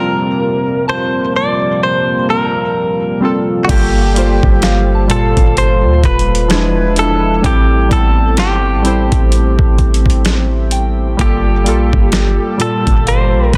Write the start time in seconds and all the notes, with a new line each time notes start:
Already playing: C3 F3 G3 A#3 C4 F4 A#4
0.88 C5 A5
1.36 D5
1.83 C5
2.30 A#4
3.20 G3 C4 F4
3.25 A4
3.65 G3 F#4
3.69 G1 G3 A#3 F4 G4 A4, kick, closed hi-hat, crash
4.14 G3 A#3 F4, closed hi-hat
4.19 C5
4.43 G1, kick
4.62 F5, snare, closed hi-hat
4.95 A5
5.08 A#2 G3 F4 A4, closed hi-hat
5.12 A4
5.20 C7
5.37 G1, kick, closed hi-hat
5.57 C5, closed hi-hat
5.84 D2
6.04 E1 B4, kick, closed hi-hat
6.19 closed hi-hat
6.35 closed hi-hat
6.48 F3 D4 E4 B4 G#6, snare, closed hi-hat
6.53 G#3
6.96 A4, closed hi-hat
7.42 A1 G3 A3 C4 E4 G4, kick, closed hi-hat
7.46 A4
7.89 A1 G3 B3 E4 A4, kick, closed hi-hat
7.93 C4 A4
8.37 G1 G4 A5, snare, closed hi-hat
8.75 A1
8.83 G3 C4 E4, closed hi-hat
8.87 C5
9.12 A1, kick, closed hi-hat
9.32 closed hi-hat
9.59 A1, kick
9.78 kick, closed hi-hat
9.94 closed hi-hat
10.06 kick
10.10 closed hi-hat
10.25 snare, closed hi-hat
10.71 G5, closed hi-hat
11.17 G1 G3 A#3 F4 G4 A4, kick, closed hi-hat
11.22 A4
11.64 A#1 G3 A#3 F4, closed hi-hat
11.69 A4
11.93 G1, kick
12.12 snare, closed hi-hat
12.58 A#2 G3 F4 A4, closed hi-hat
12.62 A4
12.87 G1, kick, closed hi-hat
13.07 C5 F5, closed hi-hat
13.34 A#1
13.53 E2, kick, closed hi-hat